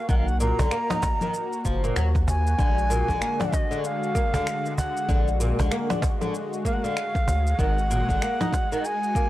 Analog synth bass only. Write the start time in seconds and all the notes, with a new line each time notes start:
0.09 B1
0.59 B1
1.65 F#1
1.97 D#2
2.59 A#1
3.09 A#1
5.09 A#1
5.59 A#1
7.28 D2
7.59 G#1
8.09 G#1